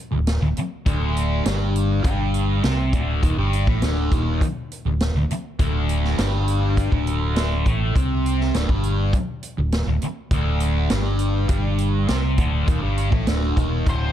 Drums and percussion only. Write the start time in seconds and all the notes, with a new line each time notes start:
0.27 snare, closed hi-hat
0.57 closed hi-hat
0.86 kick, closed hi-hat
1.17 closed hi-hat
1.46 snare, closed hi-hat
1.76 closed hi-hat
2.04 kick, closed hi-hat
2.34 closed hi-hat
2.64 snare, closed hi-hat
2.93 kick, closed hi-hat
3.23 kick, closed hi-hat
3.53 closed hi-hat
3.67 kick
3.82 snare, closed hi-hat
4.12 kick, closed hi-hat
4.41 kick, closed hi-hat
4.72 closed hi-hat
5.00 snare, closed hi-hat
5.31 closed hi-hat
5.59 kick, closed hi-hat
5.89 closed hi-hat
6.04 snare
6.18 snare, closed hi-hat
6.48 closed hi-hat
6.77 kick, closed hi-hat
6.92 kick
7.07 closed hi-hat
7.36 snare, closed hi-hat
7.66 kick, closed hi-hat
7.96 kick, closed hi-hat
8.26 closed hi-hat
8.41 snare
8.54 snare, closed hi-hat
8.69 kick
8.83 closed hi-hat
9.13 kick, closed hi-hat
9.43 closed hi-hat
9.72 snare, closed hi-hat
10.02 closed hi-hat
10.31 kick, closed hi-hat
10.60 closed hi-hat
10.90 snare, closed hi-hat
11.19 closed hi-hat
11.49 kick, closed hi-hat
11.78 closed hi-hat
12.08 snare, closed hi-hat
12.38 kick, closed hi-hat
12.68 kick, closed hi-hat
12.98 closed hi-hat
13.12 kick
13.27 snare, closed hi-hat
13.57 kick, closed hi-hat
13.87 kick, closed hi-hat